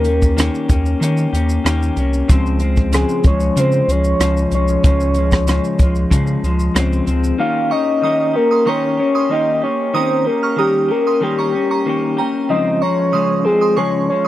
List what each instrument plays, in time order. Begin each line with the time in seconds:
Already playing: analog synth bass D#2, soft synth lead A#4
0.04 clean electric guitar C#4 G4, closed hi-hat, shaker
0.09 clean electric guitar A#3
0.22 kick, shaker
0.37 clean electric guitar D#3 A#3 C#4 G4, cross-stick, closed hi-hat, shaker
0.55 shaker
0.68 analog synth bass D#2, clean electric guitar C#4 G4, kick, closed hi-hat, shaker
0.72 clean electric guitar A#3
0.86 shaker
1.00 clean electric guitar D#3 A#3 C#4 G4, analog synth bass D#3, closed hi-hat, shaker
1.17 shaker
1.33 analog synth bass D#2, clean electric guitar A#3 C#4 G4, closed hi-hat, shaker
1.49 shaker
1.64 analog synth bass D#2, clean electric guitar D#3 A#3 C#4 G4, cross-stick, closed hi-hat, shaker
1.83 shaker
1.96 analog synth bass C2, clean electric guitar C#4 G4, closed hi-hat, shaker
2.00 clean electric guitar A#3
2.13 shaker
2.28 analog synth bass C#2, clean electric guitar C#3 F3 G#3 C4, kick, closed hi-hat, shaker
2.46 shaker
2.60 clean electric guitar G#3 C4, closed hi-hat, shaker
2.64 clean electric guitar F3
2.76 kick, shaker
2.92 clean electric guitar C#3 F3 G#3 C4, soft synth lead G#4, cross-stick, closed hi-hat, shaker
3.09 shaker
3.24 analog synth bass C#2, clean electric guitar G#3, soft synth lead C#5, kick, closed hi-hat, shaker
3.28 clean electric guitar F3
3.40 shaker
3.56 clean electric guitar C#3 F3 G#3 C4, analog synth bass C#3, soft synth lead C5, closed hi-hat, shaker
3.72 shaker
3.88 analog synth bass C#2, clean electric guitar F3 G#3, soft synth lead C#5, closed hi-hat, shaker
4.04 shaker
4.20 analog synth bass C#2, clean electric guitar C#3 F3 G#3, cross-stick, closed hi-hat, shaker
4.37 shaker
4.51 analog synth bass C2, clean electric guitar G#3, soft synth lead C#5, closed hi-hat, shaker
4.56 clean electric guitar F3
4.68 shaker
4.84 analog synth bass C#2, clean electric guitar C#3 F3 G#3, kick, closed hi-hat, shaker
5.00 shaker
5.14 clean electric guitar G#3, closed hi-hat, shaker
5.19 clean electric guitar F3
5.31 kick, cross-stick, shaker
5.47 clean electric guitar C#3 F3 G#3, cross-stick, closed hi-hat, shaker
5.64 shaker
5.79 analog synth bass C#2, clean electric guitar G#3, kick, closed hi-hat, shaker
5.83 clean electric guitar F3
5.95 shaker
6.11 clean electric guitar C#3 F3 G#3, analog synth bass C#3, kick, closed hi-hat, shaker
6.27 shaker
6.43 analog synth bass C#2, clean electric guitar F3 G#3, closed hi-hat, shaker
6.59 shaker
6.75 analog synth bass C#2, clean electric guitar C#3 F3 G#3 C4, cross-stick, closed hi-hat, shaker
6.93 shaker
7.06 analog synth bass C#2, clean electric guitar F3 G#3 C4, closed hi-hat, shaker
7.24 shaker
7.38 clean electric guitar D#3 A#3 C#4 G4, soft synth lead F5
7.70 clean electric guitar A#3 C#4 G4, soft synth lead D#5, synth bell A#5 C#6
8.02 clean electric guitar D#3 A#3 C#4 G4, synth bell A#5 D#6
8.33 clean electric guitar C#4 G4, soft synth lead A#4
8.38 clean electric guitar A#3
8.51 synth bell C6 D#6
8.65 clean electric guitar D#3 A#3 C#4 G4, soft synth lead C#5, synth bell A#5 C#6
8.97 clean electric guitar A#3 C#4 G4, soft synth lead C#5
9.15 synth bell C6 D#6
9.29 clean electric guitar D#3 A#3 C#4 G4, soft synth lead D#5
9.62 clean electric guitar A#3 C#4 G4, soft synth lead C#5
9.94 clean electric guitar D#3 A#3 C#4 G4, soft synth lead C5, synth bell A#5 D#6
10.25 clean electric guitar A#3 C#4 G4, soft synth lead A#4
10.43 synth bell C#6 F6
10.56 clean electric guitar D#3 A#3 C#4 G4, soft synth lead G4, synth bell A#5 D#6
10.88 clean electric guitar C#4 G4, soft synth lead A#4
10.93 clean electric guitar A#3
11.07 synth bell C6 D#6
11.20 clean electric guitar D#3 A#3 C#4 G4, soft synth lead G4
11.39 synth bell A#5 C#6
11.53 clean electric guitar C#4 G4
11.57 clean electric guitar A#3
11.71 synth bell A#5 C#6
11.86 clean electric guitar D#3 A#3 C#4 G4
12.17 clean electric guitar A#3 C#4 G4, synth bell G5 A#5
12.49 clean electric guitar C#3 F3 G#3 C4, soft synth lead D#5
12.82 clean electric guitar F3 G#3, soft synth lead C#5, synth bell A#5 C#6
13.12 clean electric guitar C#3 F3 G#3, synth bell C6 D#6
13.45 clean electric guitar F3 G#3 C4, soft synth lead G#4
13.61 synth bell C6 D#6
13.77 clean electric guitar C#3 F3 G#3, soft synth lead C#5, synth bell G#5 C#6
14.09 clean electric guitar F3 G#3, soft synth lead C#5
14.25 synth bell D#6